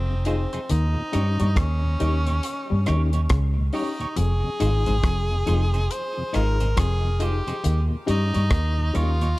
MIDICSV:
0, 0, Header, 1, 8, 480
1, 0, Start_track
1, 0, Tempo, 869565
1, 380, Time_signature, 4, 2, 24, 8
1, 5184, End_track
2, 0, Start_track
2, 0, Title_t, "Clean electric guitar"
2, 0, Program_c, 0, 27
2, 146, Note_on_c, 0, 63, 76
2, 149, Note_on_c, 0, 68, 92
2, 154, Note_on_c, 0, 72, 92
2, 220, Note_off_c, 0, 63, 0
2, 222, Note_off_c, 0, 68, 0
2, 224, Note_off_c, 0, 72, 0
2, 292, Note_on_c, 0, 72, 70
2, 297, Note_on_c, 0, 68, 65
2, 300, Note_on_c, 0, 63, 60
2, 328, Note_off_c, 0, 72, 0
2, 330, Note_off_c, 0, 68, 0
2, 332, Note_off_c, 0, 63, 0
2, 625, Note_on_c, 0, 63, 80
2, 629, Note_on_c, 0, 67, 88
2, 634, Note_on_c, 0, 73, 86
2, 700, Note_off_c, 0, 63, 0
2, 702, Note_off_c, 0, 67, 0
2, 705, Note_off_c, 0, 73, 0
2, 776, Note_on_c, 0, 73, 64
2, 781, Note_on_c, 0, 67, 56
2, 784, Note_on_c, 0, 63, 51
2, 810, Note_off_c, 0, 73, 0
2, 812, Note_off_c, 0, 67, 0
2, 814, Note_off_c, 0, 63, 0
2, 1107, Note_on_c, 0, 63, 82
2, 1115, Note_on_c, 0, 67, 98
2, 1119, Note_on_c, 0, 73, 108
2, 1181, Note_off_c, 0, 63, 0
2, 1185, Note_off_c, 0, 67, 0
2, 1187, Note_off_c, 0, 73, 0
2, 1255, Note_on_c, 0, 73, 64
2, 1259, Note_on_c, 0, 67, 59
2, 1264, Note_on_c, 0, 63, 48
2, 1289, Note_off_c, 0, 73, 0
2, 1291, Note_off_c, 0, 67, 0
2, 1294, Note_off_c, 0, 63, 0
2, 1588, Note_on_c, 0, 63, 101
2, 1591, Note_on_c, 0, 67, 106
2, 1594, Note_on_c, 0, 73, 98
2, 1661, Note_off_c, 0, 63, 0
2, 1663, Note_off_c, 0, 67, 0
2, 1664, Note_off_c, 0, 73, 0
2, 1733, Note_on_c, 0, 73, 55
2, 1739, Note_on_c, 0, 67, 49
2, 1742, Note_on_c, 0, 63, 46
2, 1768, Note_off_c, 0, 73, 0
2, 1771, Note_off_c, 0, 67, 0
2, 1772, Note_off_c, 0, 63, 0
2, 2062, Note_on_c, 0, 63, 85
2, 2068, Note_on_c, 0, 67, 100
2, 2071, Note_on_c, 0, 73, 100
2, 2138, Note_off_c, 0, 63, 0
2, 2141, Note_off_c, 0, 67, 0
2, 2143, Note_off_c, 0, 73, 0
2, 2213, Note_on_c, 0, 73, 72
2, 2216, Note_on_c, 0, 67, 57
2, 2221, Note_on_c, 0, 63, 51
2, 2248, Note_off_c, 0, 73, 0
2, 2249, Note_off_c, 0, 67, 0
2, 2252, Note_off_c, 0, 63, 0
2, 2541, Note_on_c, 0, 63, 73
2, 2545, Note_on_c, 0, 68, 84
2, 2549, Note_on_c, 0, 72, 97
2, 2618, Note_off_c, 0, 63, 0
2, 2619, Note_off_c, 0, 68, 0
2, 2622, Note_off_c, 0, 72, 0
2, 2689, Note_on_c, 0, 72, 65
2, 2694, Note_on_c, 0, 68, 52
2, 2697, Note_on_c, 0, 63, 42
2, 2726, Note_off_c, 0, 72, 0
2, 2728, Note_off_c, 0, 68, 0
2, 2730, Note_off_c, 0, 63, 0
2, 3021, Note_on_c, 0, 63, 96
2, 3025, Note_on_c, 0, 68, 88
2, 3029, Note_on_c, 0, 72, 94
2, 3098, Note_off_c, 0, 63, 0
2, 3100, Note_off_c, 0, 68, 0
2, 3101, Note_off_c, 0, 72, 0
2, 3167, Note_on_c, 0, 72, 67
2, 3171, Note_on_c, 0, 68, 61
2, 3174, Note_on_c, 0, 63, 54
2, 3205, Note_off_c, 0, 72, 0
2, 3206, Note_off_c, 0, 68, 0
2, 3208, Note_off_c, 0, 63, 0
2, 3497, Note_on_c, 0, 63, 81
2, 3503, Note_on_c, 0, 68, 94
2, 3505, Note_on_c, 0, 72, 82
2, 3575, Note_off_c, 0, 63, 0
2, 3578, Note_off_c, 0, 68, 0
2, 3579, Note_off_c, 0, 72, 0
2, 3645, Note_on_c, 0, 72, 53
2, 3651, Note_on_c, 0, 68, 48
2, 3654, Note_on_c, 0, 63, 48
2, 3684, Note_off_c, 0, 72, 0
2, 3686, Note_off_c, 0, 68, 0
2, 3688, Note_off_c, 0, 63, 0
2, 3978, Note_on_c, 0, 63, 78
2, 3983, Note_on_c, 0, 68, 87
2, 3986, Note_on_c, 0, 72, 89
2, 4055, Note_off_c, 0, 63, 0
2, 4058, Note_off_c, 0, 68, 0
2, 4060, Note_off_c, 0, 72, 0
2, 4127, Note_on_c, 0, 72, 71
2, 4130, Note_on_c, 0, 68, 72
2, 4134, Note_on_c, 0, 63, 60
2, 4164, Note_off_c, 0, 72, 0
2, 4166, Note_off_c, 0, 68, 0
2, 4168, Note_off_c, 0, 63, 0
2, 4457, Note_on_c, 0, 63, 94
2, 4463, Note_on_c, 0, 67, 81
2, 4467, Note_on_c, 0, 73, 89
2, 4535, Note_off_c, 0, 63, 0
2, 4538, Note_off_c, 0, 67, 0
2, 4540, Note_off_c, 0, 73, 0
2, 4610, Note_on_c, 0, 73, 63
2, 4611, Note_on_c, 0, 67, 50
2, 4616, Note_on_c, 0, 63, 51
2, 4646, Note_off_c, 0, 67, 0
2, 4646, Note_off_c, 0, 73, 0
2, 4649, Note_off_c, 0, 63, 0
2, 4941, Note_on_c, 0, 63, 83
2, 4944, Note_on_c, 0, 67, 86
2, 4946, Note_on_c, 0, 73, 92
2, 5017, Note_off_c, 0, 63, 0
2, 5019, Note_off_c, 0, 67, 0
2, 5020, Note_off_c, 0, 73, 0
2, 5088, Note_on_c, 0, 73, 59
2, 5093, Note_on_c, 0, 67, 61
2, 5095, Note_on_c, 0, 63, 58
2, 5125, Note_off_c, 0, 73, 0
2, 5127, Note_off_c, 0, 67, 0
2, 5128, Note_off_c, 0, 63, 0
2, 5184, End_track
3, 0, Start_track
3, 0, Title_t, "Reed electric piano"
3, 0, Program_c, 1, 4
3, 141, Note_on_c, 1, 63, 94
3, 143, Note_on_c, 1, 65, 87
3, 147, Note_on_c, 1, 68, 104
3, 268, Note_off_c, 1, 63, 0
3, 269, Note_off_c, 1, 65, 0
3, 271, Note_off_c, 1, 68, 0
3, 291, Note_on_c, 1, 68, 48
3, 292, Note_on_c, 1, 65, 43
3, 327, Note_off_c, 1, 65, 0
3, 327, Note_off_c, 1, 68, 0
3, 619, Note_on_c, 1, 61, 84
3, 621, Note_on_c, 1, 63, 85
3, 626, Note_on_c, 1, 67, 102
3, 747, Note_off_c, 1, 61, 0
3, 748, Note_off_c, 1, 63, 0
3, 750, Note_off_c, 1, 67, 0
3, 1100, Note_on_c, 1, 61, 82
3, 1104, Note_on_c, 1, 63, 80
3, 1106, Note_on_c, 1, 67, 96
3, 1227, Note_off_c, 1, 61, 0
3, 1229, Note_off_c, 1, 63, 0
3, 1231, Note_off_c, 1, 67, 0
3, 1579, Note_on_c, 1, 61, 93
3, 1581, Note_on_c, 1, 63, 86
3, 1585, Note_on_c, 1, 67, 100
3, 1707, Note_off_c, 1, 61, 0
3, 1708, Note_off_c, 1, 63, 0
3, 1710, Note_off_c, 1, 67, 0
3, 2058, Note_on_c, 1, 61, 97
3, 2061, Note_on_c, 1, 63, 92
3, 2064, Note_on_c, 1, 67, 103
3, 2186, Note_off_c, 1, 61, 0
3, 2188, Note_off_c, 1, 63, 0
3, 2189, Note_off_c, 1, 67, 0
3, 2539, Note_on_c, 1, 63, 91
3, 2542, Note_on_c, 1, 65, 81
3, 2546, Note_on_c, 1, 68, 95
3, 2667, Note_off_c, 1, 63, 0
3, 2668, Note_off_c, 1, 65, 0
3, 2670, Note_off_c, 1, 68, 0
3, 3016, Note_on_c, 1, 63, 82
3, 3018, Note_on_c, 1, 65, 83
3, 3023, Note_on_c, 1, 68, 97
3, 3145, Note_off_c, 1, 63, 0
3, 3146, Note_off_c, 1, 65, 0
3, 3148, Note_off_c, 1, 68, 0
3, 3497, Note_on_c, 1, 63, 88
3, 3499, Note_on_c, 1, 65, 86
3, 3501, Note_on_c, 1, 68, 110
3, 3625, Note_off_c, 1, 63, 0
3, 3626, Note_off_c, 1, 65, 0
3, 3627, Note_off_c, 1, 68, 0
3, 3972, Note_on_c, 1, 63, 99
3, 3975, Note_on_c, 1, 65, 88
3, 3977, Note_on_c, 1, 68, 100
3, 4103, Note_off_c, 1, 63, 0
3, 4104, Note_off_c, 1, 65, 0
3, 4105, Note_off_c, 1, 68, 0
3, 4126, Note_on_c, 1, 65, 43
3, 4127, Note_on_c, 1, 68, 49
3, 4163, Note_off_c, 1, 65, 0
3, 4163, Note_off_c, 1, 68, 0
3, 4451, Note_on_c, 1, 61, 96
3, 4453, Note_on_c, 1, 63, 82
3, 4458, Note_on_c, 1, 67, 98
3, 4582, Note_off_c, 1, 61, 0
3, 4583, Note_off_c, 1, 63, 0
3, 4585, Note_off_c, 1, 67, 0
3, 4935, Note_on_c, 1, 61, 80
3, 4937, Note_on_c, 1, 63, 86
3, 4941, Note_on_c, 1, 67, 90
3, 5064, Note_off_c, 1, 61, 0
3, 5065, Note_off_c, 1, 63, 0
3, 5067, Note_off_c, 1, 67, 0
3, 5184, End_track
4, 0, Start_track
4, 0, Title_t, "Tenor saxophone"
4, 0, Program_c, 2, 66
4, 0, Note_on_c, 2, 60, 84
4, 146, Note_off_c, 2, 60, 0
4, 150, Note_on_c, 2, 60, 80
4, 390, Note_on_c, 2, 63, 103
4, 399, Note_off_c, 2, 60, 0
4, 872, Note_on_c, 2, 61, 96
4, 881, Note_off_c, 2, 63, 0
4, 1826, Note_off_c, 2, 61, 0
4, 2064, Note_on_c, 2, 63, 89
4, 2303, Note_on_c, 2, 68, 120
4, 2311, Note_off_c, 2, 63, 0
4, 3266, Note_on_c, 2, 72, 114
4, 3275, Note_off_c, 2, 68, 0
4, 3503, Note_off_c, 2, 72, 0
4, 3508, Note_on_c, 2, 70, 105
4, 3727, Note_off_c, 2, 70, 0
4, 3751, Note_on_c, 2, 68, 105
4, 3992, Note_on_c, 2, 67, 89
4, 4000, Note_off_c, 2, 68, 0
4, 4337, Note_off_c, 2, 67, 0
4, 4472, Note_on_c, 2, 63, 108
4, 4947, Note_on_c, 2, 65, 98
4, 4956, Note_off_c, 2, 63, 0
4, 5184, Note_off_c, 2, 65, 0
4, 5184, End_track
5, 0, Start_track
5, 0, Title_t, "Clav"
5, 0, Program_c, 3, 7
5, 384, Note_on_c, 3, 51, 87
5, 472, Note_off_c, 3, 51, 0
5, 623, Note_on_c, 3, 55, 80
5, 711, Note_off_c, 3, 55, 0
5, 771, Note_on_c, 3, 55, 96
5, 825, Note_off_c, 3, 55, 0
5, 860, Note_on_c, 3, 51, 81
5, 1004, Note_off_c, 3, 51, 0
5, 1105, Note_on_c, 3, 51, 83
5, 1247, Note_off_c, 3, 51, 0
5, 1491, Note_on_c, 3, 55, 78
5, 1545, Note_off_c, 3, 55, 0
5, 1582, Note_on_c, 3, 51, 68
5, 1726, Note_off_c, 3, 51, 0
5, 1822, Note_on_c, 3, 49, 85
5, 1966, Note_off_c, 3, 49, 0
5, 2298, Note_on_c, 3, 41, 86
5, 2387, Note_off_c, 3, 41, 0
5, 2539, Note_on_c, 3, 44, 88
5, 2628, Note_off_c, 3, 44, 0
5, 2687, Note_on_c, 3, 44, 88
5, 2743, Note_off_c, 3, 44, 0
5, 2777, Note_on_c, 3, 41, 79
5, 2922, Note_off_c, 3, 41, 0
5, 3017, Note_on_c, 3, 41, 90
5, 3162, Note_off_c, 3, 41, 0
5, 3493, Note_on_c, 3, 44, 64
5, 3639, Note_off_c, 3, 44, 0
5, 3736, Note_on_c, 3, 41, 85
5, 3880, Note_off_c, 3, 41, 0
5, 4216, Note_on_c, 3, 51, 85
5, 4306, Note_off_c, 3, 51, 0
5, 4454, Note_on_c, 3, 55, 83
5, 4544, Note_off_c, 3, 55, 0
5, 4603, Note_on_c, 3, 55, 75
5, 4659, Note_off_c, 3, 55, 0
5, 4696, Note_on_c, 3, 51, 91
5, 4841, Note_off_c, 3, 51, 0
5, 4935, Note_on_c, 3, 51, 83
5, 5080, Note_off_c, 3, 51, 0
5, 5184, End_track
6, 0, Start_track
6, 0, Title_t, "Tonewheel organ"
6, 0, Program_c, 4, 16
6, 50, Note_on_c, 4, 48, 57
6, 53, Note_on_c, 4, 41, 54
6, 83, Note_off_c, 4, 48, 0
6, 85, Note_off_c, 4, 41, 0
6, 145, Note_on_c, 4, 63, 68
6, 146, Note_on_c, 4, 56, 73
6, 149, Note_on_c, 4, 65, 83
6, 197, Note_off_c, 4, 63, 0
6, 198, Note_off_c, 4, 56, 0
6, 199, Note_off_c, 4, 65, 0
6, 293, Note_on_c, 4, 41, 63
6, 293, Note_on_c, 4, 48, 61
6, 325, Note_off_c, 4, 41, 0
6, 325, Note_off_c, 4, 48, 0
6, 532, Note_on_c, 4, 46, 65
6, 534, Note_on_c, 4, 39, 65
6, 564, Note_off_c, 4, 46, 0
6, 565, Note_off_c, 4, 39, 0
6, 627, Note_on_c, 4, 55, 87
6, 629, Note_on_c, 4, 61, 75
6, 632, Note_on_c, 4, 63, 98
6, 678, Note_off_c, 4, 55, 0
6, 680, Note_off_c, 4, 61, 0
6, 681, Note_off_c, 4, 63, 0
6, 772, Note_on_c, 4, 39, 62
6, 775, Note_on_c, 4, 46, 64
6, 804, Note_off_c, 4, 39, 0
6, 806, Note_off_c, 4, 46, 0
6, 1012, Note_on_c, 4, 39, 63
6, 1012, Note_on_c, 4, 46, 64
6, 1044, Note_off_c, 4, 39, 0
6, 1044, Note_off_c, 4, 46, 0
6, 1105, Note_on_c, 4, 55, 78
6, 1105, Note_on_c, 4, 61, 73
6, 1109, Note_on_c, 4, 63, 88
6, 1157, Note_off_c, 4, 55, 0
6, 1157, Note_off_c, 4, 61, 0
6, 1159, Note_off_c, 4, 63, 0
6, 1254, Note_on_c, 4, 39, 59
6, 1254, Note_on_c, 4, 46, 57
6, 1285, Note_off_c, 4, 39, 0
6, 1285, Note_off_c, 4, 46, 0
6, 1497, Note_on_c, 4, 39, 66
6, 1497, Note_on_c, 4, 46, 63
6, 1527, Note_off_c, 4, 39, 0
6, 1527, Note_off_c, 4, 46, 0
6, 1584, Note_on_c, 4, 55, 78
6, 1586, Note_on_c, 4, 61, 76
6, 1588, Note_on_c, 4, 63, 82
6, 1637, Note_off_c, 4, 55, 0
6, 1638, Note_off_c, 4, 61, 0
6, 1639, Note_off_c, 4, 63, 0
6, 1730, Note_on_c, 4, 46, 64
6, 1731, Note_on_c, 4, 39, 63
6, 1763, Note_off_c, 4, 46, 0
6, 1764, Note_off_c, 4, 39, 0
6, 1972, Note_on_c, 4, 39, 56
6, 1973, Note_on_c, 4, 46, 52
6, 2004, Note_off_c, 4, 39, 0
6, 2005, Note_off_c, 4, 46, 0
6, 2059, Note_on_c, 4, 55, 67
6, 2062, Note_on_c, 4, 61, 68
6, 2065, Note_on_c, 4, 63, 78
6, 2114, Note_off_c, 4, 55, 0
6, 2116, Note_off_c, 4, 61, 0
6, 2117, Note_off_c, 4, 63, 0
6, 2205, Note_on_c, 4, 46, 62
6, 2206, Note_on_c, 4, 39, 65
6, 2240, Note_off_c, 4, 46, 0
6, 2241, Note_off_c, 4, 39, 0
6, 2451, Note_on_c, 4, 48, 60
6, 2452, Note_on_c, 4, 41, 62
6, 2483, Note_off_c, 4, 48, 0
6, 2484, Note_off_c, 4, 41, 0
6, 2542, Note_on_c, 4, 56, 83
6, 2545, Note_on_c, 4, 63, 69
6, 2546, Note_on_c, 4, 65, 89
6, 2596, Note_off_c, 4, 56, 0
6, 2597, Note_off_c, 4, 63, 0
6, 2598, Note_off_c, 4, 65, 0
6, 2693, Note_on_c, 4, 41, 63
6, 2693, Note_on_c, 4, 48, 64
6, 2724, Note_off_c, 4, 41, 0
6, 2724, Note_off_c, 4, 48, 0
6, 2930, Note_on_c, 4, 41, 61
6, 2931, Note_on_c, 4, 48, 59
6, 2963, Note_off_c, 4, 41, 0
6, 2963, Note_off_c, 4, 48, 0
6, 3016, Note_on_c, 4, 56, 80
6, 3022, Note_on_c, 4, 63, 71
6, 3022, Note_on_c, 4, 65, 86
6, 3072, Note_off_c, 4, 56, 0
6, 3075, Note_off_c, 4, 63, 0
6, 3076, Note_off_c, 4, 65, 0
6, 3166, Note_on_c, 4, 41, 53
6, 3168, Note_on_c, 4, 48, 62
6, 3201, Note_off_c, 4, 41, 0
6, 3201, Note_off_c, 4, 48, 0
6, 3408, Note_on_c, 4, 41, 65
6, 3410, Note_on_c, 4, 48, 61
6, 3442, Note_off_c, 4, 41, 0
6, 3442, Note_off_c, 4, 48, 0
6, 3496, Note_on_c, 4, 56, 77
6, 3499, Note_on_c, 4, 63, 70
6, 3501, Note_on_c, 4, 65, 88
6, 3552, Note_off_c, 4, 56, 0
6, 3554, Note_off_c, 4, 63, 0
6, 3555, Note_off_c, 4, 65, 0
6, 3643, Note_on_c, 4, 48, 63
6, 3644, Note_on_c, 4, 41, 61
6, 3679, Note_off_c, 4, 41, 0
6, 3679, Note_off_c, 4, 48, 0
6, 3885, Note_on_c, 4, 48, 56
6, 3886, Note_on_c, 4, 41, 57
6, 3920, Note_off_c, 4, 41, 0
6, 3920, Note_off_c, 4, 48, 0
6, 3974, Note_on_c, 4, 56, 72
6, 3975, Note_on_c, 4, 63, 67
6, 3976, Note_on_c, 4, 65, 77
6, 4031, Note_off_c, 4, 56, 0
6, 4032, Note_off_c, 4, 63, 0
6, 4032, Note_off_c, 4, 65, 0
6, 4122, Note_on_c, 4, 41, 58
6, 4124, Note_on_c, 4, 48, 65
6, 4158, Note_off_c, 4, 41, 0
6, 4159, Note_off_c, 4, 48, 0
6, 4364, Note_on_c, 4, 39, 60
6, 4364, Note_on_c, 4, 46, 59
6, 4399, Note_off_c, 4, 39, 0
6, 4399, Note_off_c, 4, 46, 0
6, 4454, Note_on_c, 4, 55, 85
6, 4455, Note_on_c, 4, 61, 76
6, 4457, Note_on_c, 4, 63, 88
6, 4511, Note_off_c, 4, 55, 0
6, 4512, Note_off_c, 4, 61, 0
6, 4512, Note_off_c, 4, 63, 0
6, 4602, Note_on_c, 4, 46, 63
6, 4603, Note_on_c, 4, 39, 59
6, 4638, Note_off_c, 4, 46, 0
6, 4639, Note_off_c, 4, 39, 0
6, 4843, Note_on_c, 4, 46, 59
6, 4845, Note_on_c, 4, 39, 60
6, 4879, Note_off_c, 4, 39, 0
6, 4879, Note_off_c, 4, 46, 0
6, 4931, Note_on_c, 4, 55, 81
6, 4934, Note_on_c, 4, 61, 70
6, 4937, Note_on_c, 4, 63, 94
6, 4989, Note_off_c, 4, 55, 0
6, 4991, Note_off_c, 4, 61, 0
6, 4992, Note_off_c, 4, 63, 0
6, 5083, Note_on_c, 4, 39, 56
6, 5084, Note_on_c, 4, 46, 56
6, 5118, Note_off_c, 4, 39, 0
6, 5119, Note_off_c, 4, 46, 0
6, 5184, End_track
7, 0, Start_track
7, 0, Title_t, "Fingered electric bass"
7, 0, Program_c, 5, 33
7, 0, Note_on_c, 5, 29, 100
7, 248, Note_off_c, 5, 29, 0
7, 394, Note_on_c, 5, 39, 109
7, 519, Note_off_c, 5, 39, 0
7, 635, Note_on_c, 5, 43, 92
7, 760, Note_off_c, 5, 43, 0
7, 778, Note_on_c, 5, 43, 98
7, 855, Note_off_c, 5, 43, 0
7, 866, Note_on_c, 5, 39, 98
7, 1076, Note_off_c, 5, 39, 0
7, 1111, Note_on_c, 5, 39, 85
7, 1319, Note_off_c, 5, 39, 0
7, 1501, Note_on_c, 5, 43, 93
7, 1577, Note_off_c, 5, 43, 0
7, 1595, Note_on_c, 5, 39, 90
7, 1801, Note_off_c, 5, 39, 0
7, 1825, Note_on_c, 5, 37, 101
7, 2035, Note_off_c, 5, 37, 0
7, 2308, Note_on_c, 5, 29, 110
7, 2436, Note_off_c, 5, 29, 0
7, 2548, Note_on_c, 5, 32, 95
7, 2675, Note_off_c, 5, 32, 0
7, 2698, Note_on_c, 5, 32, 89
7, 2775, Note_off_c, 5, 32, 0
7, 2783, Note_on_c, 5, 29, 99
7, 2994, Note_off_c, 5, 29, 0
7, 3032, Note_on_c, 5, 29, 94
7, 3239, Note_off_c, 5, 29, 0
7, 3509, Note_on_c, 5, 32, 86
7, 3717, Note_off_c, 5, 32, 0
7, 3742, Note_on_c, 5, 29, 100
7, 4084, Note_off_c, 5, 29, 0
7, 4226, Note_on_c, 5, 39, 108
7, 4354, Note_off_c, 5, 39, 0
7, 4467, Note_on_c, 5, 43, 96
7, 4594, Note_off_c, 5, 43, 0
7, 4613, Note_on_c, 5, 43, 79
7, 4692, Note_off_c, 5, 43, 0
7, 4700, Note_on_c, 5, 39, 112
7, 4912, Note_off_c, 5, 39, 0
7, 4946, Note_on_c, 5, 39, 89
7, 5155, Note_off_c, 5, 39, 0
7, 5184, End_track
8, 0, Start_track
8, 0, Title_t, "Drums"
8, 138, Note_on_c, 9, 42, 80
8, 194, Note_off_c, 9, 42, 0
8, 291, Note_on_c, 9, 42, 51
8, 347, Note_off_c, 9, 42, 0
8, 384, Note_on_c, 9, 42, 98
8, 439, Note_off_c, 9, 42, 0
8, 624, Note_on_c, 9, 42, 95
8, 680, Note_off_c, 9, 42, 0
8, 771, Note_on_c, 9, 42, 53
8, 826, Note_off_c, 9, 42, 0
8, 863, Note_on_c, 9, 36, 94
8, 865, Note_on_c, 9, 42, 88
8, 866, Note_on_c, 9, 37, 107
8, 918, Note_off_c, 9, 36, 0
8, 920, Note_off_c, 9, 42, 0
8, 921, Note_off_c, 9, 37, 0
8, 1104, Note_on_c, 9, 42, 65
8, 1160, Note_off_c, 9, 42, 0
8, 1251, Note_on_c, 9, 42, 48
8, 1306, Note_off_c, 9, 42, 0
8, 1343, Note_on_c, 9, 42, 94
8, 1398, Note_off_c, 9, 42, 0
8, 1580, Note_on_c, 9, 42, 72
8, 1583, Note_on_c, 9, 37, 64
8, 1635, Note_off_c, 9, 42, 0
8, 1638, Note_off_c, 9, 37, 0
8, 1727, Note_on_c, 9, 42, 60
8, 1783, Note_off_c, 9, 42, 0
8, 1819, Note_on_c, 9, 42, 100
8, 1821, Note_on_c, 9, 37, 111
8, 1822, Note_on_c, 9, 36, 96
8, 1874, Note_off_c, 9, 42, 0
8, 1877, Note_off_c, 9, 37, 0
8, 1878, Note_off_c, 9, 36, 0
8, 2057, Note_on_c, 9, 46, 76
8, 2112, Note_off_c, 9, 46, 0
8, 2210, Note_on_c, 9, 42, 52
8, 2266, Note_off_c, 9, 42, 0
8, 2299, Note_on_c, 9, 42, 91
8, 2354, Note_off_c, 9, 42, 0
8, 2541, Note_on_c, 9, 42, 93
8, 2596, Note_off_c, 9, 42, 0
8, 2685, Note_on_c, 9, 42, 47
8, 2740, Note_off_c, 9, 42, 0
8, 2779, Note_on_c, 9, 36, 99
8, 2779, Note_on_c, 9, 42, 88
8, 2780, Note_on_c, 9, 37, 104
8, 2834, Note_off_c, 9, 42, 0
8, 2835, Note_off_c, 9, 36, 0
8, 2835, Note_off_c, 9, 37, 0
8, 3019, Note_on_c, 9, 42, 60
8, 3075, Note_off_c, 9, 42, 0
8, 3168, Note_on_c, 9, 42, 45
8, 3223, Note_off_c, 9, 42, 0
8, 3261, Note_on_c, 9, 42, 93
8, 3316, Note_off_c, 9, 42, 0
8, 3499, Note_on_c, 9, 42, 72
8, 3502, Note_on_c, 9, 37, 58
8, 3554, Note_off_c, 9, 42, 0
8, 3557, Note_off_c, 9, 37, 0
8, 3645, Note_on_c, 9, 42, 58
8, 3701, Note_off_c, 9, 42, 0
8, 3738, Note_on_c, 9, 42, 100
8, 3739, Note_on_c, 9, 36, 102
8, 3741, Note_on_c, 9, 37, 113
8, 3793, Note_off_c, 9, 42, 0
8, 3795, Note_off_c, 9, 36, 0
8, 3796, Note_off_c, 9, 37, 0
8, 3975, Note_on_c, 9, 42, 85
8, 4030, Note_off_c, 9, 42, 0
8, 4127, Note_on_c, 9, 42, 52
8, 4182, Note_off_c, 9, 42, 0
8, 4218, Note_on_c, 9, 42, 102
8, 4274, Note_off_c, 9, 42, 0
8, 4460, Note_on_c, 9, 42, 87
8, 4515, Note_off_c, 9, 42, 0
8, 4606, Note_on_c, 9, 42, 52
8, 4661, Note_off_c, 9, 42, 0
8, 4695, Note_on_c, 9, 42, 85
8, 4696, Note_on_c, 9, 36, 97
8, 4696, Note_on_c, 9, 37, 98
8, 4750, Note_off_c, 9, 42, 0
8, 4751, Note_off_c, 9, 36, 0
8, 4751, Note_off_c, 9, 37, 0
8, 4939, Note_on_c, 9, 42, 59
8, 4994, Note_off_c, 9, 42, 0
8, 5086, Note_on_c, 9, 42, 46
8, 5141, Note_off_c, 9, 42, 0
8, 5184, End_track
0, 0, End_of_file